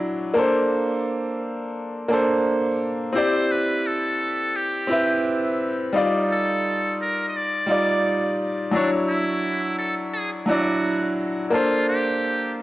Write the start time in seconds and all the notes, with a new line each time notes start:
Already playing: F#3 D4 E4 D5
0.34 A#3 D4 A4
0.39 C5
2.08 A#3 D4 A4
2.13 C5
3.13 C4 E4 G4 C5
3.18 D5
3.51 B4
3.87 A4
4.56 G4
4.87 C4 E4 B4
4.92 E5
5.93 G3 D#4 F4
5.98 D5
6.31 A4
7.01 A#4
7.28 D#5
7.36 D5
7.66 G3 D#4 F4
7.71 D5
8.71 F#3 D4 E4
8.77 C#5
9.09 E4
9.79 A4
10.13 G#4
10.46 F#3 D4 E4 F#4
10.51 D5
11.50 A#3 D4 F4 A4
11.55 C5
11.88 G4